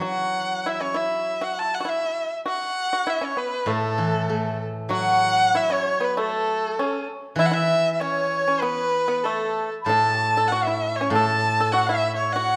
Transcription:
0.00 0.64 E3 medium
0.00 1.85 F#3 soft
0.00 0.60 F#4 medium
0.05 0.63 F#5 medium
0.63 0.80 E4 medium
0.63 0.70 F#5 medium
0.68 0.83 E5 medium
0.81 0.95 C#4 medium
0.81 0.98 C#5 medium
0.94 1.38 E4 medium
0.94 1.45 E5 medium
1.41 1.64 F#4 medium
1.41 1.60 F#5 medium
1.59 1.75 A5 medium
1.64 1.77 E4 medium
1.74 1.90 F#5 medium
1.80 1.84 F#4 medium
1.85 2.28 E4 medium
1.85 2.33 E5 medium
2.46 2.89 F#4 medium
2.46 3.11 F#5 medium
2.93 3.06 F#4 medium
3.07 3.22 E4 medium
3.07 3.26 E5 medium
3.21 3.36 C#4 medium
3.21 3.39 C#5 medium
3.37 3.66 B3 medium
3.37 3.72 B4 medium
3.66 5.54 A2 medium
3.66 4.57 A3 medium
3.70 4.63 A4 medium
3.98 5.24 E3 soft
4.30 5.55 A3 soft
4.89 6.75 F#3 medium
4.89 5.50 F#4 medium
4.89 5.57 F#5 medium
4.93 5.58 F#5 loud
5.55 5.70 E4 medium
5.55 5.70 E5 medium
5.55 5.74 E5 medium
5.70 5.99 C#4 medium
5.70 6.13 C#5 medium
5.70 6.05 C#5 medium
6.00 6.15 B3 medium
6.00 6.18 B4 medium
6.17 6.74 A3 medium
6.17 7.04 A4 medium
6.17 7.06 A4 medium
6.79 7.07 C#4 medium
7.36 9.22 E3 medium
7.36 7.50 E4 medium
7.36 7.50 E5 medium
7.36 7.47 E5 medium
7.46 7.54 F#5 medium
7.51 7.95 E4 medium
7.51 8.02 E5 medium
7.51 7.93 E5 medium
7.93 8.01 E5 medium
8.00 8.43 C#4 medium
8.00 8.62 C#5 medium
8.00 8.63 C#5 medium
8.48 8.61 C#4 medium
8.60 9.05 B3 medium
8.60 9.25 B4 medium
8.60 9.23 B4 medium
9.08 9.22 B3 medium
9.23 9.69 A3 medium
9.23 9.71 A4 medium
9.23 9.68 A4 medium
9.81 9.89 B5 medium
9.85 11.09 A2 medium
9.85 10.49 A5 loud
9.85 10.53 A5 medium
9.89 10.18 A4 medium
10.18 10.32 F#4 medium
10.37 10.51 A4 medium
10.48 10.66 F#5 medium
10.48 10.68 F#5 medium
10.52 10.66 F#4 medium
10.64 10.95 E4 medium
10.64 10.97 E5 medium
10.64 11.14 E5 medium
10.96 11.11 C#5 medium
11.01 11.13 C#4 medium
11.10 12.56 A2 medium
11.10 11.73 A5 loud
11.10 11.46 A5 medium
11.15 11.56 A4 medium
11.60 11.73 A4 medium
11.72 11.87 F#4 medium
11.72 11.86 F#5 medium
11.72 11.87 F#5 medium
11.86 12.31 E4 medium
11.86 12.15 E5 medium
11.86 12.16 E5 medium
12.16 12.33 C#5 medium
12.16 12.35 C#5 medium
12.32 12.56 F#4 medium
12.32 12.56 F#5 loud
12.32 12.56 F#5 medium

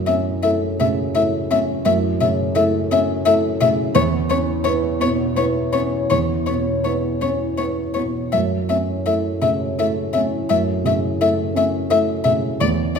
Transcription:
0.00 1.82 F#2 medium
0.00 3.90 A3 medium
0.00 3.91 E4 medium
0.00 3.91 C#5 medium
0.06 0.14 A3 soft
0.06 0.65 C#4 soft
0.06 0.15 E5 soft
0.43 0.51 A3 soft
0.43 0.76 E4 soft
0.43 0.76 A4 medium
0.43 0.51 E5 soft
0.79 1.37 C#3 soft
0.79 0.87 A3 medium
0.79 0.88 E5 soft
1.15 1.23 A3 soft
1.15 1.48 E4 soft
1.15 1.48 A4 soft
1.15 1.23 E5 medium
1.50 1.58 A3 medium
1.50 2.07 C#4 soft
1.50 1.59 E5 medium
1.85 3.91 F#2 medium
1.85 1.95 A3 medium
1.85 1.93 E5 medium
2.21 2.77 C#3 soft
2.21 2.29 A3 soft
2.21 2.29 E5 medium
2.55 2.65 A3 medium
2.55 2.87 E4 medium
2.55 2.87 A4 medium
2.55 2.63 E5 medium
2.91 2.99 A3 medium
2.91 3.47 C#4 medium
2.91 3.00 E5 medium
3.26 3.34 A3 medium
3.26 3.57 E4 medium
3.26 3.58 A4 medium
3.26 3.34 E5 medium
3.61 3.96 C#3 medium
3.61 3.70 A3 medium
3.61 3.69 E5 medium
3.94 6.07 E2 medium
3.94 4.02 B3 medium
3.94 8.32 B3 medium
3.94 8.27 E4 medium
3.94 4.03 C#5 medium
3.94 8.28 C#5 medium
4.29 4.37 B3 medium
4.29 4.87 C#4 medium
4.29 4.38 C#5 medium
4.64 4.73 B3 medium
4.64 4.98 E4 medium
4.64 4.98 B4 medium
4.64 4.72 C#5 medium
5.00 5.60 B2 soft
5.00 5.08 B3 medium
5.00 5.09 C#5 medium
5.36 5.44 B3 medium
5.36 5.71 E4 soft
5.36 5.71 B4 soft
5.36 5.45 C#5 medium
5.73 5.82 B3 soft
5.73 6.33 C#4 soft
5.73 5.81 C#5 medium
6.10 8.28 E2 soft
6.10 6.19 B3 soft
6.10 6.18 C#5 medium
6.47 7.07 B2 soft
6.47 6.56 B3 soft
6.47 6.55 C#5 soft
6.84 6.93 B3 soft
6.84 7.18 E4 soft
6.84 7.18 B4 soft
6.84 6.92 C#5 soft
7.21 7.29 B3 soft
7.21 7.81 C#4 soft
7.21 7.29 C#5 soft
7.58 7.66 B3 soft
7.58 7.93 E4 soft
7.58 7.93 B4 soft
7.58 7.66 C#5 soft
7.94 8.33 B2 soft
7.94 8.03 B3 soft
7.94 8.02 C#5 soft
8.31 10.46 F#2 soft
8.31 8.39 A3 soft
8.31 12.61 A3 medium
8.31 12.57 E4 medium
8.31 12.56 C#5 medium
8.31 8.40 E5 soft
8.68 8.76 A3 soft
8.68 9.27 C#4 soft
8.68 8.78 E5 soft
9.06 9.15 A3 soft
9.06 9.38 E4 soft
9.06 9.38 A4 soft
9.06 9.14 E5 soft
9.42 9.99 C#3 soft
9.42 9.51 A3 soft
9.42 9.50 E5 soft
9.79 9.88 A3 soft
9.79 10.10 E4 soft
9.79 10.11 A4 soft
9.79 9.87 E5 soft
10.13 10.24 A3 soft
10.13 10.71 C#4 soft
10.13 10.21 E5 soft
10.49 12.57 F#2 soft
10.49 10.59 A3 medium
10.49 10.57 E5 medium
10.85 11.41 C#3 soft
10.85 10.94 A3 soft
10.85 10.94 E5 soft
11.21 11.30 A3 soft
11.21 11.52 E4 soft
11.21 11.52 A4 medium
11.21 11.29 E5 medium
11.55 11.64 A3 soft
11.55 12.11 C#4 soft
11.55 11.65 E5 medium
11.90 12.00 A3 medium
11.90 12.22 E4 soft
11.90 12.22 A4 medium
11.90 11.99 E5 medium
12.24 12.60 C#3 soft
12.24 12.34 A3 medium
12.24 12.32 E5 medium
12.61 12.99 E2 medium
12.61 12.99 A3 medium
12.61 12.70 A3 medium
12.61 12.99 E4 medium
12.61 12.69 D5 medium
12.61 12.99 D5 medium
12.96 12.99 D4 soft
12.96 12.99 D5 soft

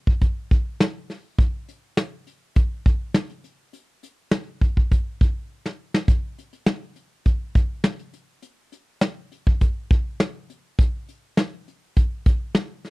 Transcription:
0.07 kick loud
0.21 kick medium
0.21 closed hi-hat medium
0.51 kick loud
0.51 closed hi-hat medium
0.80 snare loud
0.80 closed hi-hat loud
1.10 snare soft
1.10 open hi-hat medium
1.39 kick loud
1.39 closed hi-hat medium
1.68 closed hi-hat medium
1.97 snare loud
1.97 closed hi-hat medium
2.27 closed hi-hat medium
2.55 kick medium
2.55 closed hi-hat medium
2.86 kick loud
2.86 closed hi-hat medium
3.14 snare loud
3.14 closed hi-hat loud
3.29 closed hi-hat medium
3.44 closed hi-hat medium
3.73 closed hi-hat medium
4.03 closed hi-hat medium
4.31 snare loud
4.31 closed hi-hat medium
4.61 kick medium
4.61 closed hi-hat medium
4.77 kick medium
4.91 kick loud
4.91 closed hi-hat medium
5.21 kick loud
5.21 closed hi-hat medium
5.66 snare medium
5.94 snare loud
6.08 kick loud
6.08 closed hi-hat medium
6.38 closed hi-hat medium
6.53 closed hi-hat medium
6.66 snare loud
6.66 closed hi-hat medium
6.96 closed hi-hat medium
7.25 kick medium
7.25 closed hi-hat medium
7.55 kick loud
7.55 closed hi-hat medium
7.84 snare loud
7.84 closed hi-hat medium
7.99 closed hi-hat medium
8.13 closed hi-hat medium
8.42 closed hi-hat medium
8.72 closed hi-hat medium
9.01 snare loud
9.01 closed hi-hat medium
9.32 closed hi-hat medium
9.47 kick medium
9.61 kick medium
9.61 closed hi-hat medium
9.91 kick loud
9.91 closed hi-hat medium
10.20 snare loud
10.20 closed hi-hat medium
10.50 closed hi-hat medium
10.79 kick loud
10.79 closed hi-hat medium
11.09 closed hi-hat medium
11.37 snare loud
11.37 closed hi-hat medium
11.68 closed hi-hat medium
11.97 kick medium
11.97 closed hi-hat medium
12.26 kick loud
12.26 closed hi-hat medium
12.55 snare loud
12.55 closed hi-hat medium
12.85 snare soft
12.85 closed hi-hat medium

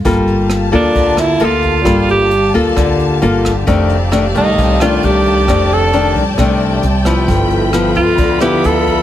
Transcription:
0.05 0.69 G1 medium
0.05 0.93 G3 soft
0.05 0.69 A#3 soft
0.05 0.69 F4 soft
0.05 7.25 G4 medium
0.05 0.69 A4 medium
0.05 3.63 F5 medium
0.05 1.84 A5 medium
0.05 kick medium
0.05 closed hi-hat soft
0.27 closed hi-hat soft
0.50 cross-stick medium
0.50 closed hi-hat soft
0.72 0.94 D2 medium
0.72 1.37 A#3 medium
0.72 1.22 D4 medium
0.72 1.37 F4 medium
0.72 1.37 A4 medium
0.72 kick soft
0.72 closed hi-hat soft
0.95 1.37 D2 medium
0.95 1.83 D3 soft
0.95 kick medium
0.95 closed hi-hat soft
1.17 1.46 E4 medium
1.17 cross-stick medium
1.17 closed hi-hat soft
1.40 1.83 D2 medium
1.40 1.82 A#3 soft
1.40 1.82 F4 soft
1.40 1.82 A4 medium
1.40 closed hi-hat soft
1.44 2.10 F4 medium
1.62 kick soft
1.62 closed hi-hat soft
1.85 2.50 G1 medium
1.85 2.74 G3 soft
1.85 2.30 A#3 soft
1.85 2.31 F4 soft
1.85 2.31 A4 medium
1.85 3.65 A5 medium
1.85 kick medium
1.85 cross-stick medium
1.85 closed hi-hat soft
2.09 2.52 G4 medium
2.09 closed hi-hat soft
2.31 closed hi-hat soft
2.54 2.75 D2 medium
2.54 3.18 A#3 medium
2.54 3.18 F4 medium
2.54 3.18 A4 medium
2.54 kick soft
2.54 closed hi-hat soft
2.76 3.19 D2 medium
2.76 3.64 D3 soft
2.76 kick medium
2.76 cross-stick medium
2.76 closed hi-hat soft
2.99 closed hi-hat soft
3.22 3.64 G1 medium
3.22 3.51 A#3 medium
3.22 3.51 F4 medium
3.22 3.52 A4 medium
3.22 closed hi-hat soft
3.45 kick soft
3.45 cross-stick medium
3.45 closed hi-hat soft
3.67 4.31 F1 medium
3.67 4.55 F2 medium
3.67 3.96 D#3 medium
3.67 3.96 A3 soft
3.67 3.96 D4 medium
3.67 7.25 D5 medium
3.67 5.46 F5 medium
3.67 7.25 A5 medium
3.67 kick medium
3.67 closed hi-hat soft
3.90 closed hi-hat soft
4.11 4.25 D#3 soft
4.11 4.25 A3 medium
4.11 4.25 D4 medium
4.11 cross-stick medium
4.11 closed hi-hat soft
4.35 4.56 C2 medium
4.35 4.76 D#3 medium
4.35 4.76 A3 medium
4.35 4.78 D#4 medium
4.35 kick soft
4.35 closed hi-hat soft
4.58 5.00 C2 medium
4.58 5.46 C3 medium
4.58 kick medium
4.58 closed hi-hat soft
4.80 5.45 D#3 medium
4.80 5.45 A3 medium
4.80 5.45 D4 medium
4.80 5.06 F4 medium
4.80 cross-stick medium
4.80 closed hi-hat soft
5.03 5.45 C2 medium
5.03 5.74 G4 medium
5.03 closed hi-hat soft
5.25 kick soft
5.25 closed hi-hat soft
5.46 6.11 F1 medium
5.46 6.36 F2 soft
5.46 5.90 D#3 soft
5.46 5.90 A3 soft
5.46 5.90 D4 medium
5.46 9.02 G5 medium
5.46 kick medium
5.46 cross-stick medium
5.46 closed hi-hat soft
5.71 6.17 A4 medium
5.71 closed hi-hat soft
5.93 6.22 D#3 medium
5.93 6.22 A3 medium
5.93 6.22 D4 medium
5.93 closed hi-hat soft
6.16 6.37 C2 medium
6.16 kick soft
6.16 closed hi-hat soft
6.38 6.80 C2 medium
6.38 7.26 C3 soft
6.38 6.83 D#3 medium
6.38 6.83 A3 soft
6.38 6.84 D4 medium
6.38 kick medium
6.38 cross-stick medium
6.38 closed hi-hat soft
6.60 closed hi-hat soft
6.83 7.25 C2 medium
6.83 closed hi-hat soft
7.05 7.70 F3 medium
7.05 7.70 B3 medium
7.05 7.70 E4 medium
7.05 kick soft
7.05 cross-stick medium
7.05 closed hi-hat soft
7.27 7.92 G1 medium
7.27 8.16 G2 medium
7.27 9.02 A4 medium
7.27 9.02 E5 medium
7.27 9.02 B5 medium
7.27 kick medium
7.27 closed hi-hat soft
7.50 closed hi-hat soft
7.73 8.38 F3 medium
7.73 8.38 B3 medium
7.73 cross-stick medium
7.73 closed hi-hat soft
7.95 8.17 D2 medium
7.95 8.38 F4 medium
7.95 kick soft
7.95 closed hi-hat soft
8.18 8.60 D2 medium
8.18 9.02 D3 medium
8.18 kick medium
8.18 closed hi-hat soft
8.40 9.02 F3 medium
8.40 9.02 B3 medium
8.40 9.02 E4 medium
8.40 8.67 G4 medium
8.40 cross-stick medium
8.40 closed hi-hat soft
8.64 9.02 D2 medium
8.64 9.02 A4 medium
8.64 closed hi-hat soft
8.86 kick soft
8.86 closed hi-hat soft

